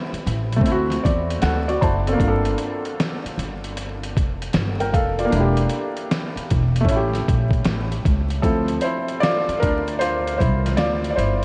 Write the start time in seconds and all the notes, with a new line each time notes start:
Already playing: G3 B3 C4 E4
0.13 muted upright bass stroke, closed hi-hat
0.26 A1, closed hi-hat
0.53 A3, closed hi-hat
0.61 D2 C4, kick
0.66 E4, closed hi-hat
0.72 F#4
0.90 snare, closed hi-hat
1.04 E2 D5, kick, closed hi-hat
1.30 closed hi-hat
1.42 D2 A4 F#5, snare, closed hi-hat
1.68 F#4 D5, closed hi-hat
1.81 F#1 E4 C5 A5, kick, closed hi-hat
2.07 C4 A4, closed hi-hat
2.13 A#3
2.18 G1 D4, kick, closed hi-hat
2.23 F4
2.28 A4
2.45 closed hi-hat
2.58 closed hi-hat
2.85 closed hi-hat
3.00 snare, closed hi-hat
3.25 muted upright bass stroke, closed hi-hat
3.38 G1, closed hi-hat
3.64 closed hi-hat
3.77 closed hi-hat
4.03 closed hi-hat
4.17 F1, kick, closed hi-hat
4.42 closed hi-hat
4.53 G1, snare, closed hi-hat
4.80 A#4 G5, closed hi-hat
4.93 F1 A4 F5, kick, closed hi-hat
5.19 F4 D5, closed hi-hat
5.25 A#3
5.30 E1 D4, closed hi-hat
5.35 E4
5.40 G4
5.57 closed hi-hat
5.69 closed hi-hat
5.97 closed hi-hat
6.11 snare, closed hi-hat
6.36 muted upright bass stroke, closed hi-hat
6.50 E1, kick, closed hi-hat
6.76 closed hi-hat
6.81 A3
6.85 A1 C#4, kick, closed hi-hat
6.91 E4
6.96 G4
7.13 snare, closed hi-hat
7.28 A#1, kick, closed hi-hat
7.51 kick, closed hi-hat
7.65 A1, snare, closed hi-hat
7.92 closed hi-hat
8.05 C#2, kick, closed hi-hat
8.30 closed hi-hat
8.42 D2 F3 C4 E4 A4, kick, closed hi-hat
8.68 closed hi-hat
8.81 E4 C5, closed hi-hat
9.08 closed hi-hat
9.20 F4 D5, snare, closed hi-hat
9.48 muted upright bass stroke, closed hi-hat
9.60 D2 D4 A#4, kick, closed hi-hat
9.88 closed hi-hat
9.99 F4 C5, closed hi-hat
10.27 closed hi-hat
10.38 C2 E4 C5, kick, closed hi-hat
10.66 snare, closed hi-hat
10.77 D2 F4 D5, snare, closed hi-hat
11.04 closed hi-hat
11.11 D5
11.16 G1 E4 C5, closed hi-hat